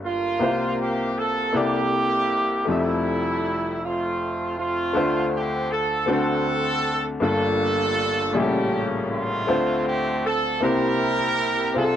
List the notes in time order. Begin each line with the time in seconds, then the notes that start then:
Already playing: G1 G2 G3 A#3 F4 A4
0.04 A#3 F4
0.39 C2 C3 A#3 E4 G4 C5
0.46 F4
0.81 G4
1.19 A4
1.53 C2 C3 A#3 E4 G4 A4 D5
2.65 F1 F2 F3 G3 A3 E4 G4
2.71 E5
3.84 A3 C4 F4
4.58 A3 C4 F4
4.93 D2 D3 A3 D4 F4 C5 E5
5.35 G4
5.72 A4
6.06 D2 D3 A3 C4 D4 F#4 C5
6.12 C4 F#4 A4
7.20 G1 G2 G3 A#3 D4 F4 A4
8.33 A1 A2 A#2 C#3 G3 A#3 G#4 E5
8.37 C#4 G4
8.43 A4
9.11 A3 C4 F4
9.47 D2 D3 A3 C4 D4 F4 C5
9.88 G4
10.25 A4
10.60 C2 C3 A#3 C4 E4 G4 A#4 C5
11.74 C2 C3 C4 F4 G#4 A4
11.84 A4